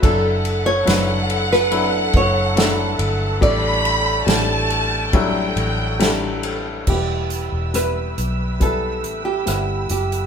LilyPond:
<<
  \new Staff \with { instrumentName = "Violin section" } { \time 4/4 \key e \dorian \tempo 4 = 70 fis''1 | b''4 a''4 g''4. r8 | r1 | }
  \new Staff \with { instrumentName = "String section" } { \time 4/4 \key e \dorian << { <a' e'' a''>1~ | <a' e'' a''>1 | <b' e'' e'''>1 | } \\ { fis''1 | g''1 | g'1 | } >> }
  \new Staff \with { instrumentName = "Nylon-string guitar" } { \time 4/4 \key e \dorian a'8. cis''4 b'8. cis''4 r8 | d''2. r4 | g'4 b'4 a'8. g'8. g'8 | }
  \new Staff \with { instrumentName = "Upright piano" } { \time 4/4 \key e \dorian <fis d' e' a'>4 <fis d' e' b'>4 <fis d' e' b'>4 <fis d' e' a'>4 | <g d' e' a'>4 <g d' e' a'>4 <fis g d' e'>4 <g d' e' a'>4 | <g b e' b'>4 <g b e' b'>4 <g b e' b'>4 <g b e' fis''>4 | }
  \new Staff \with { instrumentName = "Upright piano" } { \clef bass \time 4/4 \key e \dorian r1 | a,4. r2 r8 | e4. r2 r8 | }
  \new Staff \with { instrumentName = "Fingered electric bass" } { \clef bass \time 4/4 \key e \dorian fis,,4 fis,,4. fis,,4 g,,8 | a,,4 a,,4. a,,4. | e,,8. e,,8. b,,4 a,,8 g,,8 fis,,8 | }
  \new DrumStaff \with { instrumentName = "Drums" } \drummode { \time 4/4 <bd cymr>8 cymr8 <cymr sn>8 cymr16 sn16 cymr8 <bd cymr>8 <cymr sn>8 cymr8 | <bd cymr>8 cymr8 <cymr sn>8 cymr8 <bd cymr>8 cymr8 <cymr sn>8 cymr8 | <cymc bd>8 hh8 <hh ss>8 hh8 <hh bd>8 hh8 <hh ss>8 hh16 hh16 | }
>>